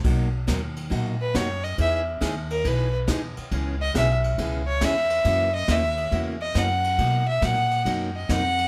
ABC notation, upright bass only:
X:1
M:4/4
L:1/8
Q:"Swing" 1/4=138
K:B
V:1 name="Upright bass" clef=bass
B,,,2 D,,2 A,,2 F,,2 | E,,2 D,,2 B,,,2 E,, z | C,,2 B,,,2 C,,2 E,,2 | F,,2 D,,2 E,,2 F,,2 |
B,,2 A,,2 F,,2 ^E,,2 |]